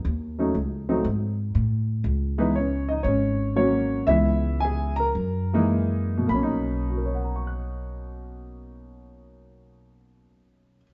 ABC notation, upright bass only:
X:1
M:4/4
L:1/8
Q:"Swing" 1/4=109
K:B
V:1 name="Upright bass" clef=bass
D,,2 C,,2 G,,2 =A,,2 | C,,4 G,,,4 | C,,4 F,,4 | B,,,8- |
B,,,8 |]